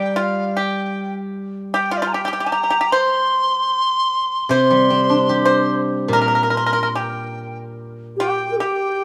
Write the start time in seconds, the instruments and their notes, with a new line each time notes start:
Already playing: guzheng G3, pipa G4, dizi G5
0.16 pipa F4, dizi F5
0.56 pipa G4, dizi G5
1.73 pipa G4, dizi G5
1.91 pipa F4, dizi F5
1.97 dizi D5
2.02 pipa F4, dizi F5 A#5
2.12 pipa G4, dizi G5
2.25 pipa G4
2.33 pipa G4
2.40 pipa G4
2.46 pipa G4
2.51 pipa G4, dizi A#5
2.63 pipa G4
2.70 pipa G4
2.81 pipa G4
2.91 pipa C5, dizi C6
4.49 guzheng C3, pipa C5, dizi C6
4.70 guzheng G3
4.90 guzheng C4
5.10 guzheng D4
5.29 guzheng G4
5.45 pipa C5
6.08 guzheng A#2, dizi A#5
6.13 pipa A#4
6.21 pipa A#4
6.28 pipa A#4
6.35 pipa A#4
6.43 pipa A#4
6.50 pipa A#4, dizi C6
6.57 pipa A#4
6.66 pipa A#4
6.73 pipa A#4
6.83 pipa A#4
6.95 pipa G4, dizi G5
8.16 xiao G4, pipa G4, dizi G5
8.51 xiao A#4
8.57 xiao G4, pipa G4, dizi G5